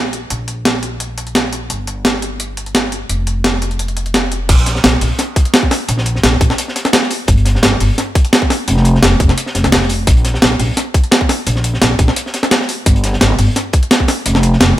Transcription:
Already playing: upright bass A#1
0.13 closed hi-hat
0.30 upright bass A#1, closed hi-hat
0.48 closed hi-hat
0.65 snare, closed hi-hat
0.83 closed hi-hat
1.00 closed hi-hat
1.18 closed hi-hat
1.27 closed hi-hat
1.35 snare, closed hi-hat
1.53 closed hi-hat
1.70 upright bass G1, closed hi-hat
1.87 closed hi-hat
2.05 snare, closed hi-hat
2.22 closed hi-hat
2.40 closed hi-hat
2.57 closed hi-hat
2.66 closed hi-hat
2.75 snare, closed hi-hat
2.92 closed hi-hat
3.10 upright bass F1, closed hi-hat
3.27 closed hi-hat
3.44 snare, closed hi-hat
3.62 closed hi-hat
3.71 closed hi-hat
3.79 closed hi-hat
3.88 closed hi-hat
3.97 closed hi-hat
4.06 closed hi-hat
4.14 snare, closed hi-hat
4.32 closed hi-hat
4.49 upright bass A#1, kick, closed hi-hat, crash
4.59 closed hi-hat
4.66 snare, closed hi-hat
4.75 snare
4.84 upright bass A#1, snare, closed hi-hat
5.01 upright bass A#1, closed hi-hat, open hi-hat
5.19 snare, closed hi-hat
5.36 kick, closed hi-hat
5.45 closed hi-hat
5.54 snare, closed hi-hat
5.63 kick
5.71 snare, closed hi-hat, open hi-hat
5.88 upright bass A#1, closed hi-hat
5.98 snare
6.06 closed hi-hat
6.15 snare
6.24 upright bass A#1, snare, closed hi-hat
6.41 upright bass A#1, kick, closed hi-hat
6.50 snare
6.58 closed hi-hat
6.68 snare
6.76 snare, closed hi-hat
6.85 snare, closed hi-hat
6.93 snare, closed hi-hat
7.03 snare
7.10 closed hi-hat, open hi-hat
7.28 upright bass G1, kick, closed hi-hat
7.37 closed hi-hat
7.45 snare, closed hi-hat
7.55 snare
7.63 upright bass G1, snare, closed hi-hat
7.80 upright bass G1, closed hi-hat, open hi-hat
7.98 snare, closed hi-hat
8.15 kick, closed hi-hat
8.25 closed hi-hat
8.33 snare, closed hi-hat
8.42 kick
8.50 snare, closed hi-hat, open hi-hat
8.68 upright bass F1, closed hi-hat
8.77 snare
8.85 closed hi-hat
8.95 snare
9.03 upright bass F1, snare, closed hi-hat
9.20 upright bass F1, kick, closed hi-hat
9.28 snare, closed hi-hat
9.38 closed hi-hat
9.46 snare
9.55 upright bass F1, snare, closed hi-hat
9.64 upright bass C2, snare, closed hi-hat
9.72 upright bass F1, snare, closed hi-hat
9.82 snare
9.89 closed hi-hat, open hi-hat
10.07 upright bass A#1, kick, closed hi-hat
10.17 closed hi-hat
10.25 snare, closed hi-hat
10.34 snare
10.42 upright bass A#1, snare, closed hi-hat
10.59 upright bass A#1, closed hi-hat, open hi-hat
10.77 snare, closed hi-hat
10.94 kick, closed hi-hat
11.04 closed hi-hat
11.11 snare, closed hi-hat
11.21 kick
11.29 snare, closed hi-hat, open hi-hat
11.47 upright bass A#1, closed hi-hat
11.56 snare
11.64 closed hi-hat
11.74 snare
11.82 upright bass A#1, snare, closed hi-hat
11.99 upright bass A#1, kick, closed hi-hat
12.08 snare
12.16 closed hi-hat
12.26 snare
12.34 snare, closed hi-hat
12.43 snare, closed hi-hat
12.51 snare, closed hi-hat
12.61 snare
12.69 closed hi-hat, open hi-hat
12.86 upright bass G1, kick, closed hi-hat
12.96 closed hi-hat
13.04 snare, closed hi-hat
13.13 snare
13.21 upright bass G1, snare, closed hi-hat
13.39 upright bass G1, closed hi-hat, open hi-hat
13.56 snare, closed hi-hat
13.73 kick, closed hi-hat
13.83 closed hi-hat
13.91 snare, closed hi-hat
14.00 kick
14.08 snare, closed hi-hat, open hi-hat
14.26 upright bass F1, closed hi-hat
14.35 snare
14.43 closed hi-hat
14.53 snare
14.60 upright bass F1, snare, closed hi-hat

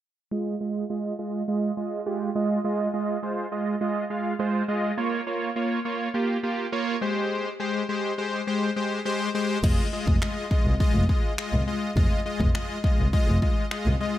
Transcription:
0.31 analog polysynth G#3 F4 D#5
0.61 analog polysynth G#3 F4 D#5
0.90 analog polysynth G#3 F4 D#5
1.19 analog polysynth G#3 F4 D#5
1.48 analog polysynth G#3 F4 D#5
1.77 analog polysynth G#3 F4 D#5
2.06 analog polysynth G#3 F4 G4
2.35 analog polysynth G#3 F4 D#5
2.64 analog polysynth G#3 F4 D#5
2.94 analog polysynth G#3 F4 D#5
3.23 analog polysynth G#3 F4 C5
3.52 analog polysynth G#3 F4 D#5
3.81 analog polysynth G#3 F4 D#5
4.10 analog polysynth G#3 F4 F5
4.39 analog polysynth G#3 F4 C5
4.68 analog polysynth G#3 F4 D#5
4.97 analog polysynth A#3 F4 C#5
5.27 analog polysynth A#3 F4 C#5
5.56 analog polysynth A#3 F4 C#5
5.85 analog polysynth A#3 F4 C#5
6.14 analog polysynth A#3 F4 G4
6.43 analog polysynth A#3 F4 G4
6.72 analog polysynth A#3 F4 C#5
7.01 analog polysynth G#3 G4 C5
7.60 analog polysynth G#3 G4 C5
7.89 analog polysynth G#3 G4 C5
8.18 analog polysynth G#3 G4 C5
8.47 analog polysynth G#3 G4 C5
8.76 analog polysynth G#3 G4 C5
9.05 analog polysynth G#3 G4 C5
9.35 analog polysynth G#3 G4 C5
9.64 double bass F1, analog polysynth G#3 F4 D#5, kick, crash
9.93 analog polysynth G#3 F4 D#5
10.07 double bass F1, kick
10.22 analog polysynth G#3 F4 D#5, finger snap
10.51 analog polysynth G#3 F4 D#5, kick
10.66 double bass C2
10.80 analog polysynth G#3 F4 D#5, kick
10.95 double bass F1
11.09 analog polysynth G#3 F4 D#5, kick
11.38 analog polysynth G#3 F4 D#5, finger snap
11.53 double bass C2
11.67 analog polysynth G#3 F4 D#5
11.96 double bass F1, analog polysynth G#3 F4 D#5, kick
12.25 analog polysynth G#3 F4 D#5
12.40 double bass F1, kick
12.55 analog polysynth G#3 F4 D#5, finger snap
12.84 analog polysynth G#3 F4 D#5, kick
12.99 double bass C2
13.13 analog polysynth G#3 F4 D#5, kick
13.28 double bass F1
13.42 analog polysynth G#3 F4 D#5, kick
13.71 analog polysynth G#3 F4 D#5, finger snap
13.86 double bass C2
14.00 analog polysynth G#3 F4 D#5

